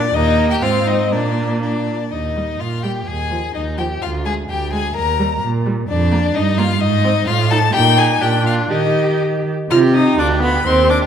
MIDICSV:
0, 0, Header, 1, 5, 480
1, 0, Start_track
1, 0, Key_signature, -3, "major"
1, 0, Tempo, 491803
1, 142, Time_signature, 2, 2, 24, 8
1, 2546, Tempo, 466563
1, 7826, Tempo, 485437
1, 11112, End_track
2, 0, Start_track
2, 0, Title_t, "Violin"
2, 0, Program_c, 0, 40
2, 0, Note_on_c, 0, 74, 97
2, 142, Note_on_c, 0, 75, 101
2, 157, Note_off_c, 0, 74, 0
2, 485, Note_off_c, 0, 75, 0
2, 491, Note_on_c, 0, 79, 84
2, 539, Note_off_c, 0, 79, 0
2, 614, Note_on_c, 0, 77, 91
2, 854, Note_on_c, 0, 75, 81
2, 868, Note_off_c, 0, 77, 0
2, 1097, Note_on_c, 0, 74, 78
2, 1112, Note_off_c, 0, 75, 0
2, 1576, Note_off_c, 0, 74, 0
2, 1581, Note_on_c, 0, 74, 67
2, 2066, Note_on_c, 0, 75, 60
2, 2081, Note_off_c, 0, 74, 0
2, 2544, Note_on_c, 0, 77, 63
2, 2559, Note_off_c, 0, 75, 0
2, 2772, Note_off_c, 0, 77, 0
2, 2778, Note_on_c, 0, 79, 59
2, 2860, Note_off_c, 0, 79, 0
2, 3017, Note_on_c, 0, 80, 66
2, 3498, Note_off_c, 0, 80, 0
2, 3509, Note_on_c, 0, 75, 57
2, 3592, Note_off_c, 0, 75, 0
2, 3749, Note_on_c, 0, 79, 68
2, 3832, Note_off_c, 0, 79, 0
2, 3997, Note_on_c, 0, 77, 76
2, 4079, Note_off_c, 0, 77, 0
2, 4240, Note_on_c, 0, 80, 71
2, 4323, Note_off_c, 0, 80, 0
2, 4486, Note_on_c, 0, 79, 71
2, 4719, Note_off_c, 0, 79, 0
2, 4728, Note_on_c, 0, 80, 79
2, 4962, Note_off_c, 0, 80, 0
2, 4966, Note_on_c, 0, 82, 85
2, 5439, Note_off_c, 0, 82, 0
2, 5924, Note_on_c, 0, 74, 94
2, 6400, Note_on_c, 0, 75, 90
2, 6416, Note_off_c, 0, 74, 0
2, 6629, Note_on_c, 0, 77, 96
2, 6645, Note_off_c, 0, 75, 0
2, 6866, Note_on_c, 0, 75, 104
2, 6881, Note_off_c, 0, 77, 0
2, 7339, Note_off_c, 0, 75, 0
2, 7345, Note_on_c, 0, 77, 98
2, 7589, Note_on_c, 0, 81, 109
2, 7605, Note_off_c, 0, 77, 0
2, 7828, Note_off_c, 0, 81, 0
2, 7833, Note_on_c, 0, 79, 118
2, 8068, Note_on_c, 0, 80, 101
2, 8083, Note_off_c, 0, 79, 0
2, 8300, Note_on_c, 0, 79, 88
2, 8315, Note_off_c, 0, 80, 0
2, 8534, Note_off_c, 0, 79, 0
2, 8540, Note_on_c, 0, 77, 79
2, 8619, Note_off_c, 0, 77, 0
2, 8785, Note_on_c, 0, 75, 76
2, 9269, Note_off_c, 0, 75, 0
2, 9771, Note_on_c, 0, 89, 96
2, 9850, Note_off_c, 0, 89, 0
2, 10007, Note_on_c, 0, 87, 76
2, 10239, Note_off_c, 0, 87, 0
2, 10247, Note_on_c, 0, 86, 91
2, 10326, Note_off_c, 0, 86, 0
2, 10485, Note_on_c, 0, 83, 88
2, 10721, Note_on_c, 0, 84, 93
2, 10736, Note_off_c, 0, 83, 0
2, 10946, Note_off_c, 0, 84, 0
2, 10952, Note_on_c, 0, 86, 89
2, 11031, Note_off_c, 0, 86, 0
2, 11112, End_track
3, 0, Start_track
3, 0, Title_t, "Violin"
3, 0, Program_c, 1, 40
3, 138, Note_on_c, 1, 63, 86
3, 486, Note_off_c, 1, 63, 0
3, 493, Note_on_c, 1, 67, 77
3, 611, Note_on_c, 1, 65, 75
3, 626, Note_off_c, 1, 67, 0
3, 848, Note_on_c, 1, 63, 69
3, 863, Note_off_c, 1, 65, 0
3, 1089, Note_off_c, 1, 63, 0
3, 1094, Note_on_c, 1, 62, 65
3, 1576, Note_off_c, 1, 62, 0
3, 1580, Note_on_c, 1, 62, 56
3, 2038, Note_off_c, 1, 62, 0
3, 2068, Note_on_c, 1, 63, 52
3, 2533, Note_on_c, 1, 65, 54
3, 2548, Note_off_c, 1, 63, 0
3, 2776, Note_on_c, 1, 67, 50
3, 2792, Note_off_c, 1, 65, 0
3, 3021, Note_on_c, 1, 68, 55
3, 3037, Note_off_c, 1, 67, 0
3, 3502, Note_off_c, 1, 68, 0
3, 3508, Note_on_c, 1, 63, 55
3, 3752, Note_on_c, 1, 67, 53
3, 3767, Note_off_c, 1, 63, 0
3, 3997, Note_on_c, 1, 65, 57
3, 4013, Note_off_c, 1, 67, 0
3, 4240, Note_off_c, 1, 65, 0
3, 4244, Note_on_c, 1, 68, 67
3, 4327, Note_off_c, 1, 68, 0
3, 4485, Note_on_c, 1, 67, 66
3, 4712, Note_off_c, 1, 67, 0
3, 4719, Note_on_c, 1, 68, 66
3, 4957, Note_off_c, 1, 68, 0
3, 4962, Note_on_c, 1, 70, 65
3, 5436, Note_off_c, 1, 70, 0
3, 5915, Note_on_c, 1, 62, 76
3, 6391, Note_on_c, 1, 63, 86
3, 6406, Note_off_c, 1, 62, 0
3, 6629, Note_on_c, 1, 65, 82
3, 6645, Note_off_c, 1, 63, 0
3, 6861, Note_off_c, 1, 65, 0
3, 6867, Note_on_c, 1, 63, 85
3, 7341, Note_on_c, 1, 65, 86
3, 7357, Note_off_c, 1, 63, 0
3, 7574, Note_off_c, 1, 65, 0
3, 7580, Note_on_c, 1, 69, 95
3, 7662, Note_off_c, 1, 69, 0
3, 7811, Note_on_c, 1, 67, 87
3, 7891, Note_off_c, 1, 67, 0
3, 8054, Note_on_c, 1, 68, 85
3, 8133, Note_off_c, 1, 68, 0
3, 8289, Note_on_c, 1, 67, 76
3, 8368, Note_off_c, 1, 67, 0
3, 8526, Note_on_c, 1, 65, 70
3, 8771, Note_off_c, 1, 65, 0
3, 8777, Note_on_c, 1, 63, 59
3, 9265, Note_off_c, 1, 63, 0
3, 9769, Note_on_c, 1, 63, 65
3, 9881, Note_on_c, 1, 67, 66
3, 9895, Note_off_c, 1, 63, 0
3, 10000, Note_on_c, 1, 63, 63
3, 10015, Note_off_c, 1, 67, 0
3, 10121, Note_on_c, 1, 67, 61
3, 10136, Note_off_c, 1, 63, 0
3, 10237, Note_off_c, 1, 67, 0
3, 10243, Note_on_c, 1, 65, 58
3, 10364, Note_on_c, 1, 67, 58
3, 10379, Note_off_c, 1, 65, 0
3, 10480, Note_on_c, 1, 65, 60
3, 10495, Note_off_c, 1, 67, 0
3, 10600, Note_on_c, 1, 67, 64
3, 10615, Note_off_c, 1, 65, 0
3, 10708, Note_off_c, 1, 67, 0
3, 10713, Note_on_c, 1, 63, 58
3, 10833, Note_on_c, 1, 67, 56
3, 10848, Note_off_c, 1, 63, 0
3, 10946, Note_on_c, 1, 63, 60
3, 10960, Note_off_c, 1, 67, 0
3, 11066, Note_on_c, 1, 67, 59
3, 11081, Note_off_c, 1, 63, 0
3, 11112, Note_off_c, 1, 67, 0
3, 11112, End_track
4, 0, Start_track
4, 0, Title_t, "Viola"
4, 0, Program_c, 2, 41
4, 142, Note_on_c, 2, 58, 76
4, 607, Note_on_c, 2, 60, 67
4, 622, Note_off_c, 2, 58, 0
4, 1095, Note_on_c, 2, 58, 62
4, 1109, Note_off_c, 2, 60, 0
4, 1871, Note_off_c, 2, 58, 0
4, 2308, Note_on_c, 2, 55, 34
4, 2383, Note_off_c, 2, 55, 0
4, 2783, Note_on_c, 2, 55, 40
4, 2861, Note_off_c, 2, 55, 0
4, 3266, Note_on_c, 2, 53, 37
4, 3345, Note_off_c, 2, 53, 0
4, 3754, Note_on_c, 2, 53, 45
4, 3833, Note_off_c, 2, 53, 0
4, 4238, Note_on_c, 2, 56, 42
4, 4316, Note_off_c, 2, 56, 0
4, 4719, Note_on_c, 2, 56, 49
4, 4797, Note_off_c, 2, 56, 0
4, 5209, Note_on_c, 2, 55, 53
4, 5286, Note_off_c, 2, 55, 0
4, 5685, Note_on_c, 2, 55, 62
4, 5762, Note_off_c, 2, 55, 0
4, 6160, Note_on_c, 2, 58, 62
4, 6236, Note_off_c, 2, 58, 0
4, 6633, Note_on_c, 2, 58, 65
4, 6709, Note_off_c, 2, 58, 0
4, 7109, Note_on_c, 2, 60, 62
4, 7185, Note_off_c, 2, 60, 0
4, 7588, Note_on_c, 2, 63, 70
4, 7664, Note_off_c, 2, 63, 0
4, 7824, Note_on_c, 2, 63, 73
4, 8295, Note_on_c, 2, 62, 70
4, 8310, Note_off_c, 2, 63, 0
4, 8782, Note_on_c, 2, 67, 60
4, 8797, Note_off_c, 2, 62, 0
4, 9562, Note_off_c, 2, 67, 0
4, 9769, Note_on_c, 2, 65, 92
4, 9849, Note_off_c, 2, 65, 0
4, 10008, Note_on_c, 2, 63, 73
4, 10246, Note_on_c, 2, 62, 90
4, 10261, Note_off_c, 2, 63, 0
4, 10471, Note_off_c, 2, 62, 0
4, 10477, Note_on_c, 2, 59, 79
4, 10708, Note_off_c, 2, 59, 0
4, 10718, Note_on_c, 2, 60, 88
4, 10954, Note_on_c, 2, 62, 74
4, 10969, Note_off_c, 2, 60, 0
4, 11112, Note_off_c, 2, 62, 0
4, 11112, End_track
5, 0, Start_track
5, 0, Title_t, "Cello"
5, 0, Program_c, 3, 42
5, 137, Note_on_c, 3, 39, 76
5, 579, Note_off_c, 3, 39, 0
5, 609, Note_on_c, 3, 44, 65
5, 1095, Note_on_c, 3, 46, 64
5, 1110, Note_off_c, 3, 44, 0
5, 1872, Note_off_c, 3, 46, 0
5, 2071, Note_on_c, 3, 39, 54
5, 2464, Note_off_c, 3, 39, 0
5, 2537, Note_on_c, 3, 46, 46
5, 2945, Note_off_c, 3, 46, 0
5, 3024, Note_on_c, 3, 39, 51
5, 3430, Note_off_c, 3, 39, 0
5, 3510, Note_on_c, 3, 39, 49
5, 3918, Note_off_c, 3, 39, 0
5, 3995, Note_on_c, 3, 38, 62
5, 4399, Note_off_c, 3, 38, 0
5, 4475, Note_on_c, 3, 38, 56
5, 4879, Note_off_c, 3, 38, 0
5, 4960, Note_on_c, 3, 39, 69
5, 5365, Note_off_c, 3, 39, 0
5, 5444, Note_on_c, 3, 46, 69
5, 5844, Note_off_c, 3, 46, 0
5, 5921, Note_on_c, 3, 41, 81
5, 6317, Note_off_c, 3, 41, 0
5, 6391, Note_on_c, 3, 43, 71
5, 6787, Note_off_c, 3, 43, 0
5, 6864, Note_on_c, 3, 44, 85
5, 7264, Note_off_c, 3, 44, 0
5, 7342, Note_on_c, 3, 45, 79
5, 7743, Note_off_c, 3, 45, 0
5, 7823, Note_on_c, 3, 46, 78
5, 8260, Note_off_c, 3, 46, 0
5, 8291, Note_on_c, 3, 46, 71
5, 8773, Note_off_c, 3, 46, 0
5, 8782, Note_on_c, 3, 51, 68
5, 9547, Note_off_c, 3, 51, 0
5, 9767, Note_on_c, 3, 48, 84
5, 10187, Note_off_c, 3, 48, 0
5, 10242, Note_on_c, 3, 38, 75
5, 10658, Note_off_c, 3, 38, 0
5, 10709, Note_on_c, 3, 39, 82
5, 11112, Note_off_c, 3, 39, 0
5, 11112, End_track
0, 0, End_of_file